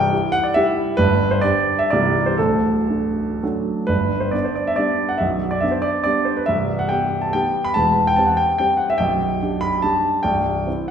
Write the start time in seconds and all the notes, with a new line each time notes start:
Already playing: C1 C2 G5
0.12 E4 G4
0.32 F#5
0.44 D5
0.54 G3 E4 G4 E5
0.97 G1 G2 B4
1.31 C5
1.41 D4 G4 D5
1.79 E5
1.90 C1 C2 G3 B3 E4 D5
2.26 C5
2.38 D1 D2 A4
2.90 A3 D4
3.43 F#3 A3 D4
3.87 G1 G2 B4
4.20 C5
4.31 B3 D4 D5
4.44 C5
4.55 D5
4.67 E5
4.76 G3 B3 D4 D5
5.09 F#5
5.18 B0 B1 E5
5.51 D5
5.61 B3 D4 E5
5.71 C5
5.82 D5
6.04 G3 B3 D4 D5
6.25 C5
6.37 B4
6.46 C1 C2 E5
6.79 F#5
6.89 B3 G4 G5
7.21 A5
7.33 G3 B3 G4 G5
7.65 B5
7.74 E1 E2 A5
8.07 G5
8.16 C4 G4 A5
8.26 F#5
8.37 G5
8.58 G3 C4 G4 G5
8.77 F#5
8.90 E5
8.98 B0 B1 G5
9.43 D4 G4
9.61 B5
9.82 G3 D4 G4 A5
10.23 C1 C2 G5
10.67 C4 E4